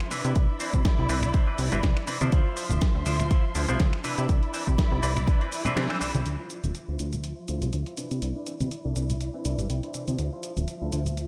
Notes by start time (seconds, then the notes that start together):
0.00 finger snap, closed hi-hat
0.11 C3 E3 C4 D4 E4 B4 D5 B5, open hi-hat, cabasa
0.25 C3, closed hi-hat, tambourine, cabasa
0.35 C2, kick, closed hi-hat, tambourine, cabasa
0.49 tambourine
0.60 E3 C4 D4 C5, open hi-hat, cabasa
0.73 C3, kick, closed hi-hat, tambourine, high conga, low conga, cabasa
0.85 kick, snare, closed hi-hat, tambourine, cabasa
0.98 C2, muted clean electric guitar stroke, tambourine
1.09 C2 E3 C4 D4 B4, muted clean electric guitar stroke, open hi-hat, cabasa
1.22 finger snap, tambourine, low conga, cabasa
1.34 D4 E4 C5, kick, closed hi-hat, tambourine, cabasa
1.47 E3 C4 D4 B4, tambourine
1.58 C2, muted clean electric guitar stroke, open hi-hat, cabasa
1.72 G1 E3 C4 D4 E4 B4, closed hi-hat, tambourine, low conga, cabasa
1.83 C2, kick, snare, closed hi-hat, tambourine, cabasa
1.97 finger snap, closed hi-hat, tambourine
2.07 C3 E3 C4 D4 B4, open hi-hat, cabasa
2.21 C3 F3 D4 E4 C5, muted clean electric guitar stroke, closed hi-hat, tambourine, high conga, cabasa
2.32 D2 F3 E4 F4 C5 E5 C6, kick, closed hi-hat, tambourine, cabasa
2.45 tambourine
2.56 F3 D4 C5 E5, open hi-hat, cabasa
2.69 D1, closed hi-hat, tambourine, high conga, low conga, cabasa
2.81 kick, snare, closed hi-hat, cabasa
2.95 D2, muted clean electric guitar stroke, tambourine
3.06 D2 F3 D4 E4 C5, muted clean electric guitar stroke, open hi-hat, cabasa
3.20 finger snap, closed hi-hat, tambourine, low conga, cabasa
3.30 E4 F4 C5, kick, closed hi-hat, tambourine, cabasa
3.44 tambourine
3.55 D2 F3 D4 E4 C5, muted clean electric guitar stroke, open hi-hat, cabasa
3.68 C2 F3 D4 E4 F4 C5, closed hi-hat, tambourine, low conga, cabasa
3.79 D2, kick, snare, closed hi-hat, tambourine, cabasa
3.93 finger snap, closed hi-hat, tambourine
4.04 C3 E3 C4 D4 E4 B4 D5 B5, open hi-hat, cabasa
4.18 C3, closed hi-hat, tambourine, cabasa
4.29 C2, kick, closed hi-hat, tambourine, cabasa
4.43 closed hi-hat, tambourine
4.53 E3 C4 D4 C5, open hi-hat, cabasa
4.67 C3, kick, closed hi-hat, tambourine, high conga, low conga, cabasa
4.78 kick, snare, closed hi-hat, tambourine, cabasa
4.91 C2, muted clean electric guitar stroke, tambourine
5.02 C2 E3 C4 D4 B4, open hi-hat, cabasa
5.17 finger snap, closed hi-hat, tambourine, low conga, cabasa
5.27 D4 E4 B4, kick, closed hi-hat, cabasa
5.41 E3 C4 D4 B4, closed hi-hat, tambourine
5.52 muted clean electric guitar stroke, open hi-hat, cabasa
5.65 C3 E3 C4 D4 E4 B4 C5, closed hi-hat, tambourine, low conga, cabasa
5.76 C3 E3 C4 D4 B4, snare, closed hi-hat, tambourine, cabasa
5.90 E3 C4 D4 C5, finger snap, closed hi-hat, tambourine
6.00 C2 E3 C4 D4 C5, open hi-hat, cabasa
6.14 C2, muted clean electric guitar stroke, closed hi-hat, tambourine, high conga, cabasa
6.25 D2 F3 E5 C6, closed hi-hat, tambourine, cabasa
6.39 E4 F4 C5
6.50 F3 D4 C5 E5, closed hi-hat, cabasa
6.63 D1, closed hi-hat, tambourine, high conga, low conga, cabasa
6.74 muted clean electric guitar stroke, closed hi-hat, tambourine, cabasa
6.88 D2 E4 F4 C5
6.99 D2 F3 D4 E4 C5, closed hi-hat, cabasa
7.12 closed hi-hat, tambourine, low conga, cabasa
7.24 muted clean electric guitar stroke, closed hi-hat, tambourine, cabasa
7.37 tambourine
7.48 D2 F3 D4 E4 F4 C5, closed hi-hat, cabasa
7.61 C2 F3 D4 E4 C5, closed hi-hat, tambourine, low conga, cabasa
7.73 D2, closed hi-hat, cabasa
7.86 E4 F4 C5, closed hi-hat, tambourine
7.97 C3 E3 C4 D4 E4 B4 D5 B5, closed hi-hat, cabasa
8.11 C3, closed hi-hat, cabasa
8.22 C2, closed hi-hat, cabasa
8.36 D4 E4 B4
8.46 E3 C4 D4 C5, closed hi-hat, cabasa
8.60 C3, closed hi-hat, tambourine, high conga, low conga, cabasa
8.71 muted clean electric guitar stroke, closed hi-hat, tambourine, cabasa
8.85 C2 D4 E4 A4, tambourine
8.96 C2 E3 C4 D4 B4, closed hi-hat, cabasa
9.09 closed hi-hat, tambourine, low conga, cabasa
9.20 muted clean electric guitar stroke, closed hi-hat, tambourine, cabasa
9.34 E3 C4 D4 B4
9.45 C2 D4 E4 B4 E5, closed hi-hat, cabasa
9.58 G1 E3 C4 D4 B4, closed hi-hat, tambourine, low conga, cabasa
9.70 C2 G5, closed hi-hat, cabasa
9.83 D4 E4 C5, closed hi-hat, tambourine
9.94 C3 E3 C4 D4 B4, closed hi-hat, cabasa
10.08 C3 F3 D4 E4 C5, closed hi-hat, tambourine, high conga, cabasa
10.19 D2 F3 E5, closed hi-hat, tambourine, cabasa
10.33 E4 F4 C5
10.43 F3 D4 C5 E5, closed hi-hat, cabasa
10.57 D1, closed hi-hat, tambourine, high conga, low conga, cabasa
10.68 muted clean electric guitar stroke, closed hi-hat, cabasa
10.82 D2 E4 F4 A4, tambourine
10.92 D2 F3 D4 E4 C5, closed hi-hat, cabasa
11.05 closed hi-hat, tambourine, low conga, cabasa
11.17 muted clean electric guitar stroke, closed hi-hat, tambourine, cabasa